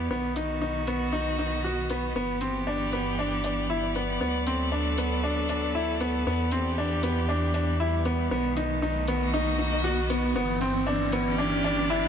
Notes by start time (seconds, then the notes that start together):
Already playing: E3 B3 G4 D5
0.11 B1 D#3 B3
0.36 D#4, closed hi-hat
0.43 F#4
0.61 D#4
0.87 B3, closed hi-hat
1.04 D#5
1.13 D#4
1.39 D#4, closed hi-hat
1.64 F#4
1.90 B3, closed hi-hat
2.16 G1 E3 B3
2.41 C4 G4, closed hi-hat
2.67 D4
2.80 D5
2.92 B3, closed hi-hat
3.19 D4
3.44 D4, closed hi-hat
3.70 E4
3.95 B3, closed hi-hat
4.21 D2 F#3 B3
4.42 A4
4.47 C4, closed hi-hat
4.72 D4
4.98 B3, closed hi-hat
5.24 D4
5.49 D4, closed hi-hat
5.75 E4
6.01 B3, closed hi-hat
6.26 E2 E3 B3, riser
6.51 C4 G4, closed hi-hat
6.78 D4
7.03 B3, closed hi-hat
7.29 D4
7.54 D4, closed hi-hat
7.80 E4
8.05 B3, closed hi-hat
8.31 B1 D#3 B3
8.57 D#4, closed hi-hat
8.82 D#4
9.08 B3, closed hi-hat
9.23 F#4 D#5
9.34 D#4
9.59 D#4, closed hi-hat
9.84 F#4
10.10 B3, closed hi-hat
10.36 G1 E3 B3
10.61 C4, closed hi-hat
10.87 D4
11.12 B3, closed hi-hat
11.28 G4 D5
11.38 D4
11.63 D4, closed hi-hat
11.90 E4